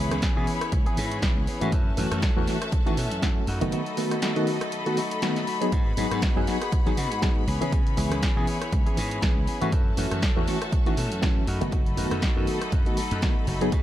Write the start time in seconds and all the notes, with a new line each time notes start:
Already playing: E3 B3 C#4 E4 G#4 C#5 B5
0.00 C#4
0.11 C#2 B3 C#4 G#4, cross-stick, closed hi-hat
0.22 E3 B3 C#4 G#4, kick, snare, closed hi-hat
0.36 B2 E3 B3 C#4 G#4
0.47 E3 B3 C#4 G#4, open hi-hat
0.61 cross-stick, closed hi-hat
0.72 C#2, kick, closed hi-hat
0.86 E3 B3 C#4 G#4, closed hi-hat
0.97 G#2 E3 B3 C#4 G#4, open hi-hat
1.12 closed hi-hat
1.22 B1 E3 B3 C#4 G#4, kick, snare, closed hi-hat
1.37 C#2
1.47 E3 B3 C#4 G#4, muted slap bass stroke, open hi-hat
1.61 G#2 E3 A3 B3 C#4 F#4 G#4, closed hi-hat
1.72 F#2 E3 A3 C#4 F#4 A4 E5 A5, kick, closed hi-hat
1.97 F#2 E3 A3 C#4 F#4 A4, open hi-hat
2.11 F#2 A3 C#4 A4, cross-stick, closed hi-hat
2.22 E3 A3 C#4 A4, kick, snare, closed hi-hat
2.36 E2 E3 A3 C#4 F#4
2.47 E3 A3 C#4 A4, snare, open hi-hat
2.62 cross-stick, closed hi-hat
2.72 muted slap bass stroke, kick, closed hi-hat
2.86 D#3 E3 A3 C#4 F#4 A4, closed hi-hat
2.97 B2 E3 A3 C#4 A4, open hi-hat
3.11 F#2, closed hi-hat
3.22 E3 A3 C#4 F#4 A4, kick, snare, closed hi-hat
3.47 F#2 F#3 A3 D#4 F#4 A4 D#5 B5, open hi-hat
3.61 F#1 D#3 A3 B3 D#4 F#4, closed hi-hat
3.72 F#3 A3 D#4 F#4, closed hi-hat
3.86 closed hi-hat
3.97 D#3 F#3 A3 B3 D#4 F#4, open hi-hat
4.11 A3 D#4 F#4, cross-stick, closed hi-hat
4.22 F#3 A3 D#4 F#4, snare, closed hi-hat
4.36 D#3 A3 B3 F#4, closed hi-hat
4.47 F#3 A3 D#4 F#4, open hi-hat
4.61 cross-stick, closed hi-hat
4.72 closed hi-hat
4.86 D#3 A3 B3 D#4 F#4, closed hi-hat
4.97 F#3 A3 D#4 F#4, open hi-hat
5.11 closed hi-hat
5.22 D#3 F#3 A3 B3 D#4 F#4, snare, closed hi-hat
5.36 snare, closed hi-hat
5.47 F#3 A3 D#4 F#4, open hi-hat
5.61 F#3 A3 B3 D#4 F#4 G#4, closed hi-hat
5.72 G#2 B3 D#4 F#4 G#4 F#5, kick, closed hi-hat
5.97 G#2 F#3 B3 D#4 F#4 G#4, open hi-hat
6.11 G#2 D#4 F#4, cross-stick, closed hi-hat
6.22 B3 D#4 F#4, kick, snare, closed hi-hat
6.36 F#2 F#3 B3 D#4 G#4
6.47 B3 D#4 F#4, snare, open hi-hat
6.62 cross-stick, closed hi-hat
6.72 muted slap bass stroke, kick, closed hi-hat
6.86 D#3 F#3 B3 D#4 F#4 G#4, closed hi-hat
6.97 C#3 B3 D#4 F#4, open hi-hat
7.12 G#2, closed hi-hat
7.22 F#3 B3 D#4 F#4 G#4, kick, snare, closed hi-hat
7.47 C#2 E3 B3 C#4 E4 G#4 C#5, open hi-hat
7.61 C#3 E3 B3 C#4 G#4, closed hi-hat
7.72 E3 B3 C#4 G#4, kick, closed hi-hat
7.87 closed hi-hat
7.97 C#2 E3 B3 C#4 G#4, open hi-hat
8.11 C#2 B3 C#4 G#4, cross-stick, closed hi-hat
8.22 E3 B3 C#4 G#4, kick, snare, closed hi-hat
8.36 B2 E3 B3 C#4 G#4
8.47 E3 B3 C#4 G#4, open hi-hat
8.62 cross-stick, closed hi-hat
8.72 C#2, kick, closed hi-hat
8.86 E3 B3 C#4 G#4, closed hi-hat
8.97 G#2 E3 B3 C#4 G#4, open hi-hat
9.11 closed hi-hat
9.22 B1 E3 B3 C#4 G#4, kick, snare, closed hi-hat
9.37 C#2
9.47 E3 B3 C#4 G#4, muted slap bass stroke, open hi-hat
9.61 G#2 E3 A3 B3 C#4 F#4 G#4, closed hi-hat
9.72 F#2 E3 A3 C#4 F#4 A4 E5 A5, kick, closed hi-hat
9.97 F#2 E3 A3 C#4 F#4 A4, open hi-hat
10.11 F#2 A3 C#4 A4, cross-stick, closed hi-hat
10.22 E3 A3 C#4 A4, kick, snare, closed hi-hat
10.36 E2 E3 A3 C#4 F#4
10.47 E3 A3 C#4 A4, snare, open hi-hat
10.62 cross-stick, closed hi-hat
10.72 muted slap bass stroke, kick, closed hi-hat
10.86 D#3 E3 A3 C#4 F#4 A4, closed hi-hat
10.97 B2 E3 A3 C#4 A4, open hi-hat
11.12 F#2, closed hi-hat
11.22 E3 A3 C#4 F#4 A4, kick, snare, closed hi-hat
11.47 F#2 F#3 A3 D#4 F#4 A4 D#5 B5, open hi-hat
11.61 F#1 D#3 A3 B3 D#4 F#4, closed hi-hat
11.72 F#3 A3 D#4 F#4, kick, closed hi-hat
11.86 closed hi-hat
11.96 F#2 D#3 F#3 A3 B3 D#4 F#4, open hi-hat
12.11 F#2 A3 D#4 F#4, cross-stick, closed hi-hat
12.22 F#3 A3 D#4 F#4, kick, snare, closed hi-hat
12.36 F#2 D#3 A3 B3 F#4
12.47 F#3 A3 D#4 F#4, open hi-hat
12.62 cross-stick, closed hi-hat
12.72 F#2, kick, closed hi-hat
12.86 D#3 A3 B3 D#4 F#4, closed hi-hat
12.97 F#3 A3 D#4 F#4, open hi-hat
13.11 F#2, closed hi-hat
13.22 D#3 F#3 A3 B3 D#4 F#4, kick, snare, closed hi-hat
13.47 F#1 F#3 A3 D#4 F#4, open hi-hat
13.61 F#3 B3 D#4 F#4 G#4, closed hi-hat
13.72 F#3 B3 D#4 F#4 G#4 F#5, kick, closed hi-hat